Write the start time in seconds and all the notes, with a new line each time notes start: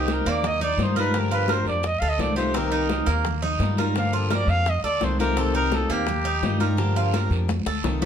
Already playing: C2 D#4 G4
0.08 D#3 A#3 C4 G4, high bongo, high conga, short guiro
0.12 A#4
0.26 D#2 A#3 D5, high bongo, high conga, short guiro
0.43 D#5, muted steel-string acoustic guitar stroke, high bongo, high conga, low conga, long guiro
0.61 D#4 D5, high bongo, high conga, low conga
0.77 G2 D#3 G3 D#4 F4, high bongo, low bongo, high conga, short guiro
0.83 C5
0.96 G3 D#4 F4 A#4 B4, high conga, short guiro
1.14 D3 F3 A#3 D4 G4, high bongo, high conga, long guiro
1.19 A#4
1.31 F4 B4, high bongo, high conga
1.48 F3 A#3 D4 G4 A#4, high bongo, high conga, short guiro
1.52 C5
1.65 F2 D5, high bongo, high conga, short guiro
1.83 D#5, muted steel-string acoustic guitar stroke, high bongo, high conga, long guiro
1.99 D2 A4 F5, high bongo, high conga
2.09 D#5
2.18 C2 D#3 A3 C4 F4 D5, high bongo, low bongo, high conga, short guiro
2.36 D#3 A3 C4 F4 G4 C5, short guiro
2.54 C3 D#3 A#3 C4 G4 A#4, high bongo, high conga, long guiro
2.72 D#4, high bongo, high conga
2.89 D#3 A#3 C4 G4, high bongo, high conga, short guiro
3.06 D#2 A#3, high bongo, high conga, short guiro
3.24 muted steel-string acoustic guitar stroke, high bongo, high conga, low conga, long guiro
3.42 D#4, high bongo, high conga, low conga
3.59 G2 D#3 G3 D#4 F4, high bongo, low bongo, high conga, short guiro
3.77 G3 D#4 F4 A#4, high conga, short guiro
3.95 D3 F3 A#3 D4 G4 F5, high bongo, high conga, long guiro
4.13 F4 A4, high bongo, high conga
4.30 F3 A#3 D4 G4 A#4 D5, high bongo, high conga, short guiro
4.47 F2 F5, high bongo, high conga, short guiro
4.66 D#5, muted steel-string acoustic guitar stroke, high bongo, high conga, long guiro
4.83 D2 A4 D5, high bongo, high conga
5.01 C2 D#3 A3 C4 F4 C5, high bongo, low bongo, high conga, short guiro
5.19 D#3 A3 C4 F4 G4 A#4, high conga, short guiro
5.37 C3 D#3 A#3 C4 G4 A4, high bongo, high conga, long guiro
5.54 D#4 A#4, high bongo, high conga
5.72 D#3 A#3 C4 G4 A4, high bongo, high conga, short guiro
5.89 D#2 A#3 G4, high bongo, high conga, short guiro
6.07 muted steel-string acoustic guitar stroke, high bongo, high conga, low conga, long guiro
6.25 D#4, high bongo, high conga
6.42 G2 D#3 G3 D#4 F4, high bongo, low bongo, high conga, short guiro
6.60 G3 D#4 F4 A#4, high conga, short guiro
6.77 D3 F3 A#3 D4 G4, high bongo, high conga, long guiro
6.96 F4, high bongo, high conga
7.14 F3 A#3 D4 G4 A#4, high bongo, high conga, short guiro
7.30 F2, high bongo, high conga, short guiro
7.48 muted steel-string acoustic guitar stroke, high bongo, high conga, long guiro
7.66 D2 A4, high bongo
7.83 C2 D#3 A3 C4 F4, low bongo, low conga, short guiro
8.02 C4 F4 G4, low bongo, low conga, short guiro